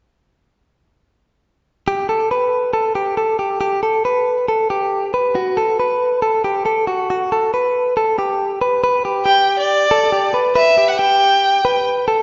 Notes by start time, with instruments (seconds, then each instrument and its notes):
1.88 clean electric guitar G4
2.09 clean electric guitar A4
2.31 clean electric guitar B4
2.73 clean electric guitar A4
2.95 clean electric guitar G4
3.17 clean electric guitar A4
3.39 clean electric guitar G4
3.61 clean electric guitar G4
3.83 clean electric guitar A4
4.05 clean electric guitar B4
4.48 clean electric guitar A4
4.70 clean electric guitar G4
5.14 clean electric guitar B4
5.35 clean electric guitar F#4
5.57 clean electric guitar A4
5.80 clean electric guitar B4
6.22 clean electric guitar A4
6.44 clean electric guitar G4
6.66 clean electric guitar A4
6.87 clean electric guitar F#4
7.10 clean electric guitar F#4
7.32 clean electric guitar A4
7.54 clean electric guitar B4
7.97 clean electric guitar A4
8.19 clean electric guitar G4
8.61 clean electric guitar B4
8.84 clean electric guitar B4
9.05 clean electric guitar G4
9.26 clean electric guitar G4, violin G5
9.60 violin D5
9.91 clean electric guitar A4
10.12 clean electric guitar G4
10.34 clean electric guitar B4
10.55 clean electric guitar B4, violin E5
10.78 clean electric guitar G4
10.88 violin F#5
10.99 clean electric guitar G4, violin G5
11.65 clean electric guitar B4
12.08 clean electric guitar A4